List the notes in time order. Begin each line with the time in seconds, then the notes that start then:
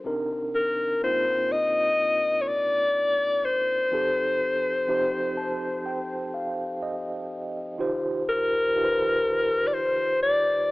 0.04 C3 C4 D4 D#4 A#4
0.55 A#4
1.01 C3 A#3 C4 D#4 F4 C5
1.52 D#5
2.42 C#5
2.48 D5
3.45 C5
3.91 F3 C4 D#4 G4 A4
4.88 F3 C4 D#4 G4 C5
5.37 A5
5.86 G5
6.34 F5
6.82 D#5
7.78 D#3 D#4 F4 G4 C5
8.28 A#4
8.75 D#3 D#4 F4 G4 B4
8.84 C5
9.67 D5
9.74 C5
10.22 D5